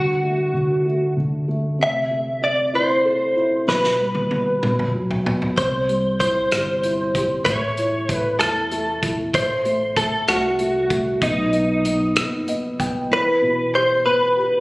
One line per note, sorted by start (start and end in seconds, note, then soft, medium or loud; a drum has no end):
0.00 0.52 D3 medium
0.00 1.13 F#4 medium
0.23 0.84 A3 soft
0.54 1.15 D3 soft
0.85 1.47 A3 medium
1.17 1.77 D3 soft
1.48 1.78 A3 soft
1.79 3.63 C3 medium
1.79 2.43 E5 medium
2.11 3.33 A3 soft
2.42 3.64 C4 soft
2.42 2.75 D5 medium
2.73 3.34 E4 soft
2.73 3.65 C5 medium
3.05 3.66 A4 medium
3.36 3.66 E4 medium
3.67 4.59 B2 medium
3.67 4.91 B4 medium
3.67 snare soft
3.84 snare soft
3.99 4.61 G3 soft
4.15 high tom medium
4.31 4.62 B3 soft
4.31 high tom medium
4.63 5.55 B2 medium
4.63 mid tom medium
4.79 mid tom medium
4.95 5.56 F#3 soft
5.11 floor tom medium
5.25 5.56 B3 soft
5.25 floor tom medium
5.42 floor tom medium
5.57 6.48 C2 medium
5.57 7.42 C3 medium
5.57 6.19 C5 medium
5.57 kick medium
5.57 closed hi-hat medium
5.89 7.11 G3 soft
5.89 closed hi-hat soft
6.20 6.82 E4 soft
6.20 7.45 C5 medium
6.20 kick medium
6.20 closed hi-hat medium
6.51 7.42 G1 medium
6.51 7.14 G4 soft
6.51 cross-stick loud
6.51 closed hi-hat medium
6.83 7.45 E4 soft
6.83 closed hi-hat medium
7.15 7.46 G4 medium
7.15 kick medium
7.15 closed hi-hat medium
7.45 8.36 A1 medium
7.45 8.08 A3 medium
7.45 8.14 C#5 medium
7.45 kick medium
7.45 closed hi-hat medium
7.77 8.40 E4 soft
7.77 closed hi-hat soft
8.09 8.70 A3 soft
8.09 kick medium
8.09 closed hi-hat medium
8.14 8.39 B4 medium
8.39 9.30 E2 medium
8.39 9.01 E4 soft
8.39 9.06 A4 medium
8.39 cross-stick loud
8.39 closed hi-hat medium
8.71 9.32 A3 medium
8.71 closed hi-hat medium
9.03 9.33 E4 medium
9.03 kick medium
9.03 closed hi-hat medium
9.34 10.24 A1 medium
9.34 9.64 A3 medium
9.34 9.96 C5 medium
9.34 kick medium
9.34 closed hi-hat medium
9.65 9.96 A3 soft
9.65 closed hi-hat soft
9.96 10.27 A3 medium
9.96 10.26 A4 medium
9.96 kick medium
9.96 closed hi-hat medium
10.28 11.18 C2 medium
10.28 10.58 A3 soft
10.28 11.22 F#4 medium
10.28 cross-stick loud
10.28 closed hi-hat medium
10.59 10.89 A3 medium
10.59 closed hi-hat medium
10.90 11.21 A3 medium
10.90 kick medium
10.90 closed hi-hat medium
11.22 12.13 B1 medium
11.22 11.52 B3 medium
11.22 12.45 D#4 medium
11.22 kick medium
11.22 closed hi-hat medium
11.53 11.83 B3 medium
11.53 closed hi-hat soft
11.85 12.16 B3 medium
11.85 closed hi-hat medium
12.16 13.07 F#1 medium
12.16 12.46 B3 medium
12.16 cross-stick loud
12.16 closed hi-hat medium
12.48 12.78 B3 medium
12.48 12.78 D#5 medium
12.48 closed hi-hat medium
12.80 13.10 B3 medium
12.80 13.09 G5 medium
12.80 kick medium
12.80 closed hi-hat medium
13.11 14.60 E3 medium
13.11 13.75 B4 medium
13.42 14.60 B2 soft
13.74 14.35 G4 medium
13.74 14.05 C5 medium
14.05 14.60 B3 medium
14.05 14.60 B4 medium
14.37 14.60 G4 medium